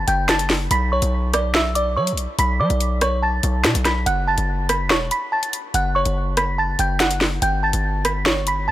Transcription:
0.07 F#1 G5 G6, closed hi-hat
0.29 A5 A6, snare, closed hi-hat
0.39 closed hi-hat
0.50 snare, open hi-hat
0.71 B1 B5 B6, closed hi-hat
0.92 C#5 C#6
1.02 B1, closed hi-hat
1.34 D5 D6, cross-stick, closed hi-hat
1.55 E5 E6, snare
1.75 D5 D6, closed hi-hat
1.97 F#3 C#5 C#6
2.07 closed hi-hat
2.12 B1
2.17 closed hi-hat
2.39 B1 B5 B6, closed hi-hat
2.60 F#3 D5 D6
2.70 B1, closed hi-hat
2.80 closed hi-hat
3.01 C#5 C#6, cross-stick, closed hi-hat
3.22 A5 A6
3.43 B1, closed hi-hat
3.64 B2, snare, closed hi-hat
3.75 B1, closed hi-hat
3.85 B5 B6, cross-stick, snare, closed hi-hat
4.06 F#1 F#5 F#6, closed hi-hat
4.27 A5 A6
4.38 F#1, closed hi-hat
4.69 B5 B6, cross-stick, closed hi-hat
4.90 E1 C#5 C#6, snare
5.11 B5 B6, closed hi-hat
5.32 A5 A6
5.43 closed hi-hat
5.53 closed hi-hat
5.74 F#1 F#5 F#6, closed hi-hat
5.95 C#5 C#6
6.05 F#1, closed hi-hat
6.37 B5 B6, cross-stick, closed hi-hat
6.58 A5 A6
6.79 F#1 G5 G6, closed hi-hat
7.00 F#5 F#6, snare, closed hi-hat
7.11 closed hi-hat
7.21 snare, open hi-hat
7.42 G1 G5 G6, closed hi-hat
7.63 A5 A6
7.73 G1, closed hi-hat
8.05 B5 B6, cross-stick, closed hi-hat
8.26 C#5 C#6, snare
8.47 B5 B6, closed hi-hat
8.68 D3 A5 A6

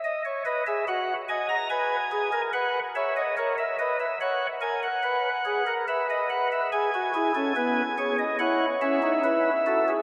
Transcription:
0.04 D#5
0.25 C#5
0.45 B4 D#5
0.66 G#4 E5
0.88 F#4 F#5
1.29 D#5 G#5
1.49 A#5
1.69 B4 G#5
2.11 G#4
2.32 A#4
2.53 B4 F#5
2.95 C#5 E5
3.16 D#5
3.37 A#4 C#5
3.58 E5
3.79 B4 D#5
4.00 E5
4.21 C#5 F#5
4.61 A#4 G#5
4.83 F#5
5.03 B4
5.45 G#4
5.67 A#4
5.88 B4 E5
6.10 D#5
6.30 F#5
6.52 E5
6.72 G#4 G#5
6.95 F#4
7.14 E4 G#4
7.35 C#4 A4
7.56 B3 B4
7.98 G#4 C#5
8.18 D#5
8.39 E4 C#5 F#5
8.81 C#4 E5
9.03 D#4
9.24 E4 B4
9.66 F#4 A4
9.88 G#4

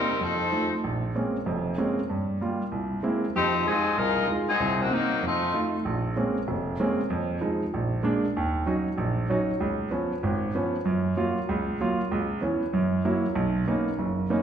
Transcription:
Already playing: G3 A#3 C4 D#4 A#4
0.21 F2 F3 C4 D#4 A4
0.52 F3 A3 D#4
0.84 A#1
1.15 G#3 A#3 C4 C#4
1.46 F1 F2
1.78 G#3 A#3 C4 C#4
2.10 G2
2.41 G3 A#3 F4
2.72 C2
3.03 G#3 A#3 C4 E4
3.36 F2 F3 C4 D#4 G4
3.67 F3 G#3 C4 D#4 F4 G#4
3.97 C2 G#3 D#4 F4 A#4
4.27 G#3 D#4 F4
4.49 F#3 C4 D#4 G#4
4.60 C2 C3
4.80 D#3 A#3 C4 F#4
4.91 F#3 A#3 C4 D#4
5.22 F2
5.26 A3 C4 D#4 F4
5.54 A3 D#4 F4
5.85 A#1
6.16 G#3 A#3 C4 C#4
6.48 F1
6.80 G#3 A#3 C4 C#4
7.10 F2
7.41 F3 G#3 D#4
7.74 A#1
8.03 G#3 A#3 D4
8.37 D#2
8.66 F#3 C#4 D#4
8.98 A#1
9.30 F#3 C#4 D#4
9.60 C#2
9.91 F3 B3 C#4
10.23 G#1 G#2
10.55 F3 B3 C#4
10.85 F#2
11.17 F#3 A#3 F4
11.49 C#2
11.81 F#3 A#3 F4
12.11 C#2
12.41 E3 B3 C#4
12.73 F#2
13.05 F#3 A#3 E4
13.35 B1
13.67 A#3 B3 C#4 D#4
13.99 F#1
14.30 A#3 B3 C#4 D#4

